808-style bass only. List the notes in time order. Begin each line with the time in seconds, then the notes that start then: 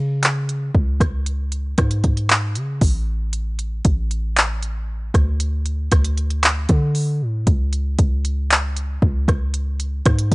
Already playing: C#3
0.75 C#2
1.78 G#2
2.56 C#3
2.82 A1
3.85 A1
5.15 D2
5.92 D2
6.70 D3
7.22 A2
7.47 C#2
7.99 C#2
9.03 C#2
10.06 G#2